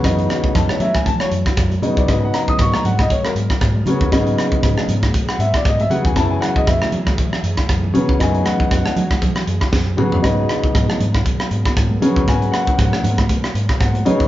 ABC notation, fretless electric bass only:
X:1
M:4/4
L:1/16
Q:"Swing 16ths" 1/4=118
K:G#m
V:1 name="Fretless electric bass" clef=bass
F,,2 z2 F,, z F,2 z2 F,, z F,,2 B,, C,, | G,,2 z2 G,, z G,,2 z2 G,, z G,,2 C, D,, | G,,2 z2 G,, z G,,2 z2 G,, z G,,2 C, D,, | F,,2 z2 F,, z F,2 z2 F,, z F,,2 B,, C,, |
F,,2 z2 F,, z F,2 z2 F,, z F,,2 B,, F,, | G,,2 z2 G,, z G,,2 z2 G,, z G,,2 C, D,, | G,,2 z2 G,, z G,,2 z2 G,, z G,,2 C, G,, |]